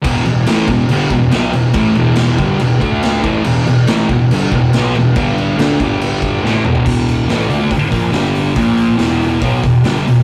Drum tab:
CC |x-x-x-x-x-x-x-x-|x-x-x-x-x-x-x-x-|x-x-x-x-x-x-x-x-|x-x-x-x-x-x-----|
HH |----------------|----------------|----------------|----------------|
SD |----o-------o---|----o-------o---|----o-------o---|----o-------o---|
T1 |----------------|----------------|----------------|-------------o--|
T2 |----------------|----------------|----------------|--------------o-|
FT |----------------|----------------|----------------|---------------o|
BD |o-----o---o-----|o-----o---o---o-|------o---o-----|o-----o---o-----|

CC |x---------------|----------------|
HH |--o-o-o-o-o-o-o-|o-o-o-o-o-o-o-o-|
SD |----o-------o---|----o-------o---|
T1 |----------------|----------------|
T2 |----------------|----------------|
FT |----------------|----------------|
BD |o-------o-o-----|o-------o-o-----|